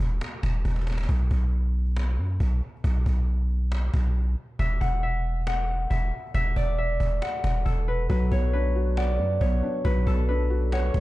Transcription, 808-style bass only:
0.00 E1
0.43 E1
0.65 E1
1.09 B1
1.31 B1
2.18 F#2
2.40 B1
2.84 B1
3.06 B1
3.94 B1
4.59 E1
4.81 E1
5.91 E1
6.34 E1
6.56 E1
7.00 E1
7.44 E1
7.66 E1
8.10 B1
8.32 B1
9.19 F#2
9.41 B1
9.85 B1
10.07 B1
10.94 B1

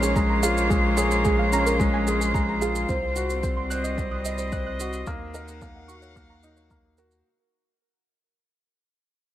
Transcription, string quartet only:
Already playing: A#3 D#4 F4 C5 C#5 F5
2.89 C4
3.25 G3
3.70 D#5
5.07 D#4
5.33 F5 F#5
5.52 A#4

